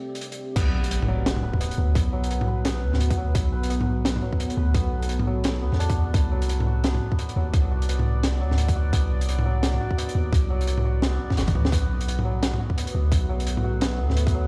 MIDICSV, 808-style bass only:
0, 0, Header, 1, 2, 480
1, 0, Start_track
1, 0, Tempo, 348837
1, 772, Time_signature, 4, 2, 24, 8
1, 19916, End_track
2, 0, Start_track
2, 0, Title_t, "808-style bass"
2, 0, Program_c, 0, 38
2, 771, Note_on_c, 0, 35, 102
2, 1959, Note_off_c, 0, 35, 0
2, 2450, Note_on_c, 0, 38, 93
2, 2676, Note_off_c, 0, 38, 0
2, 2687, Note_on_c, 0, 35, 98
2, 3894, Note_on_c, 0, 38, 91
2, 3915, Note_off_c, 0, 35, 0
2, 4601, Note_off_c, 0, 38, 0
2, 4611, Note_on_c, 0, 35, 102
2, 5799, Note_off_c, 0, 35, 0
2, 6292, Note_on_c, 0, 38, 94
2, 6517, Note_off_c, 0, 38, 0
2, 6528, Note_on_c, 0, 35, 101
2, 7734, Note_on_c, 0, 38, 79
2, 7755, Note_off_c, 0, 35, 0
2, 7865, Note_off_c, 0, 38, 0
2, 7877, Note_on_c, 0, 40, 84
2, 8440, Note_off_c, 0, 40, 0
2, 8449, Note_on_c, 0, 36, 99
2, 9638, Note_off_c, 0, 36, 0
2, 10131, Note_on_c, 0, 39, 92
2, 10356, Note_off_c, 0, 39, 0
2, 10369, Note_on_c, 0, 36, 104
2, 11570, Note_on_c, 0, 38, 95
2, 11590, Note_off_c, 0, 36, 0
2, 12279, Note_off_c, 0, 38, 0
2, 12287, Note_on_c, 0, 36, 100
2, 13477, Note_off_c, 0, 36, 0
2, 13968, Note_on_c, 0, 39, 94
2, 14195, Note_off_c, 0, 39, 0
2, 14207, Note_on_c, 0, 36, 102
2, 15397, Note_off_c, 0, 36, 0
2, 15656, Note_on_c, 0, 31, 85
2, 15894, Note_on_c, 0, 39, 91
2, 15915, Note_off_c, 0, 31, 0
2, 16118, Note_off_c, 0, 39, 0
2, 16134, Note_on_c, 0, 35, 103
2, 17321, Note_off_c, 0, 35, 0
2, 17816, Note_on_c, 0, 38, 91
2, 18039, Note_off_c, 0, 38, 0
2, 18048, Note_on_c, 0, 35, 101
2, 19254, Note_on_c, 0, 38, 95
2, 19275, Note_off_c, 0, 35, 0
2, 19916, Note_off_c, 0, 38, 0
2, 19916, End_track
0, 0, End_of_file